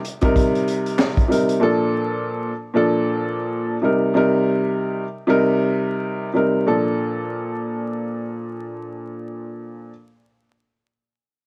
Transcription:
0.05 closed hi-hat
0.21 C3 G3 D#4 A#4, kick, closed hi-hat
0.36 kick, closed hi-hat
0.55 closed hi-hat
0.68 closed hi-hat
0.86 closed hi-hat
0.99 snare, clap
1.17 kick, closed hi-hat
1.28 C3 G3 D#4 A#4, closed hi-hat
1.49 closed hi-hat
1.60 A#2 F3 D4 A4
2.74 A#2 F3 D4 A4
3.82 C3 G3 D#4 A#4
4.14 C3 G3 D#4 A#4
5.27 C3 G3 D#4 A#4
6.33 C3 G3 D#4 A#4
6.67 A#2 F3 D4 A4

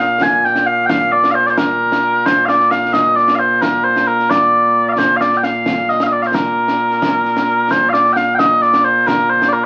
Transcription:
Already playing: A#2 A#3
0.00 F5
0.21 G#5, concert bass drum, snare
0.44 G5, snare
0.55 snare
0.66 F5
0.86 F5 G5, concert bass drum, snare
1.12 D5
1.24 snare
1.31 C5 F5
1.46 C5 D5, snare
1.58 A#4, concert bass drum, snare
1.92 snare
2.26 C5, concert bass drum, snare
2.46 D5 F5, snare
2.60 snare
2.71 F5, snare
2.93 D#5, concert bass drum, snare
3.16 D5, snare
3.28 snare
3.35 C5 F5
3.62 A#4, concert bass drum, snare
3.84 C5
3.96 snare
4.07 A#4
4.20 snare
4.30 D5, concert bass drum, snare
4.89 D5 F5
4.98 C5, concert bass drum, snare
5.17 F5
5.21 D5, snare
5.32 snare
5.37 G5
5.43 F5, snare
5.66 concert bass drum, snare
5.89 D#5, snare
6.00 F5, snare
6.07 D#5
6.12 D5
6.22 F5, snare
6.27 C5
6.34 A#4, concert bass drum, snare
6.68 snare
6.91 snare
7.02 concert bass drum, snare
7.25 snare
7.37 snare
7.71 C5, concert bass drum, snare
7.89 D5 F5
7.94 snare
8.05 snare
8.13 F5 G5, snare
8.35 G5
8.39 D#5, concert bass drum, snare
8.62 D5, snare
8.74 snare
8.84 C5
9.07 A#4, concert bass drum, snare
9.30 C5
9.42 snare
9.48 D5
9.53 A#4

